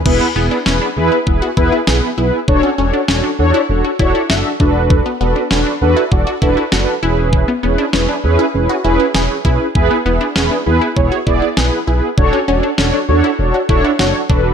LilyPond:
<<
  \new Staff \with { instrumentName = "Analog polysynth" } { \time 4/4 \key e \mixolydian \tempo 4 = 99 <b e' gis' b'>8 <b e' gis' b'>8 <b e' gis' b'>8 <b e' gis' b'>8 <b e' gis' b'>8 <b e' gis' b'>8 <b e' gis' b'>8 <b e' gis' b'>8 | <d' fis' a' cis''>8 <d' fis' a' cis''>8 <d' fis' a' cis''>8 <d' fis' a' cis''>8 <d' fis' a' cis''>8 <d' fis' a' cis''>8 <d' fis' a' e''>8 <d' fis' a' b'>8~ | <d' fis' a' b'>8 <d' fis' a' b'>8 <d' fis' a' b'>8 <d' fis' a' b'>8 <d' fis' a' d''>8 <d' fis' a' b'>8 <d' fis' a' b'>8 <cis' e' gis' b'>8~ | <cis' e' gis' b'>8 <cis' e' gis' b'>8 <cis' e' gis' b'>8 <cis' e' gis' b'>8 <cis' e' gis' b'>8 <cis' e' gis' b'>8 <cis' e' gis' b'>8 <cis' e' gis' b'>8 |
<b e' gis' b'>8 <b e' gis' b'>8 <b e' gis' b'>8 <b e' gis' b'>8 <b e' gis' cis''>8 <b e' gis' d''>8 <b e' gis' b'>8 <b e' gis' b'>8 | <d' fis' a' cis''>8 <d' fis' a' cis''>8 <d' fis' a' cis''>8 <d' fis' a' cis''>8 <d' fis' a' cis''>8 <d' fis' a' cis''>8 <d' fis' a' cis''>8 <d' fis' a' b'>8 | }
  \new Staff \with { instrumentName = "Synth pluck" } { \time 4/4 \key e \mixolydian r16 b16 b16 d'16 cis'16 d'8 e'8 fis'16 e'16 e'16 gis'8 e'8 | r16 cis'16 cis'16 d'16 cis'16 d'8 e'8 fis'16 e'16 e'16 fis'8 d'8 | r16 b16 b16 d'16 cis'16 d'8 e'8 fis'16 e'16 e'16 fis'8 e'8 | r16 b16 b16 d'16 cis'16 d'8 e'8 fis'16 e'16 e'16 gis'8 e'8 |
r16 b16 b16 d'16 cis'16 d'8 e'8 fis'16 e'16 e'16 gis'8 e'8 | r16 cis'16 cis'16 d'16 cis'16 d'8 e'8 fis'16 e'16 e'16 fis'8 d'8 | }
  \new Staff \with { instrumentName = "Analog synth bass" } { \clef bass \time 4/4 \key e \mixolydian e,,16 r16 e,,16 r16 e,,16 r16 e,16 r16 e,,16 r16 e,,16 r16 b,,16 r16 b,,16 r16 | e,,16 r16 e,,16 r16 e,,16 r16 e,16 r16 e,,16 r16 e,,16 r16 fis,,16 r16 e,,8~ | e,,16 r16 e,,16 r16 e,,16 r16 e,16 r16 e,,16 r16 e,,16 r16 fis,,16 r16 e,,8~ | e,,16 r16 e,,16 r16 e,,16 r16 e,16 r16 e,,16 r16 e,,16 r16 e,,16 r16 b,,16 r16 |
e,,16 r16 e,,16 r16 e,,16 r16 e,16 r16 e,,16 r16 e,,16 r16 b,,16 r16 b,,16 r16 | e,,16 r16 e,,16 r16 e,,16 r16 e,16 r16 e,,16 r16 e,,16 r16 fis,,16 r16 e,,8 | }
  \new DrumStaff \with { instrumentName = "Drums" } \drummode { \time 4/4 <cymc bd>4 sn4 bd8 bd8 sn4 | bd4 sn4 r8 bd8 sn8 bd8 | bd4 sn4 bd8 bd8 sn4 | bd4 sn4 r4 sn8 bd8 |
bd4 sn4 bd8 bd8 sn4 | bd4 sn4 r8 bd8 sn8 bd8 | }
>>